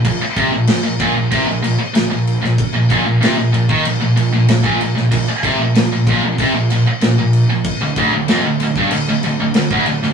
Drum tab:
CC |x-x-x-x-x-x-x-x-|x-x-x-x-x-x-x-x-|x-x-x-x-x-x-x-x-|x-x-x-x-x-x-x-x-|
SD |----o-------o--o|----o-------o--o|----o-------o---|----o-------o--o|
BD |o-o---o-o-------|o-o----o-----o--|o-o---o-o-------|o-o----o-----o--|